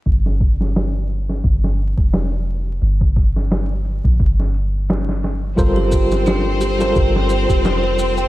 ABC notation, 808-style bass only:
X:1
M:4/4
L:1/16
Q:"Swing 16ths" 1/4=87
K:Gm
V:1 name="808-style bass" clef=bass
G,,,8 G,,,3 F,,,4- F,,, | G,,,6- G,,, B,,, G,,,8 | G,,,8 G,,,3 F,,,4- F,,, |]